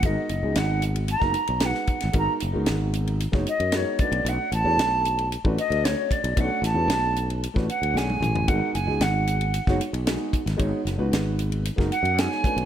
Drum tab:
RD |x-x-x-xxx-xxx-xx|x-x-x-xxx-xxx-xx|x-x-x-xxx-xxx-xx|x-x-x-xxx-xx----|
HH |p-p-p-p-p-p-p-p-|p-p-p-p-p-p-p-p-|p-p-p-p-p-p-p-p-|p-p-p-p-p-p-p-p-|
SD |----o----o--oo-o|----o----o--o---|----o-------o---|--o-o----o--o---|
T1 |----------------|----------------|----------------|-------------o--|
T2 |----------------|----------------|----------------|--------------o-|
FT |----------------|----------------|----------------|---------------o|
BD |o--------o----o-|o--------o----o-|---------o----o-|o--------o------|

RD |x-x-x-xxx-xxx-xx|x-x-x-xxx-xxx-xx|
HH |p-p-p-p-p-p-p-p-|p-p-p-p-p-p-p-p-|
SD |----o----o--o--o|--o-o----o--oo--|
T1 |----------------|----------------|
T2 |----------------|----------------|
FT |----------------|----------------|
BD |o--------o----o-|o--------o----o-|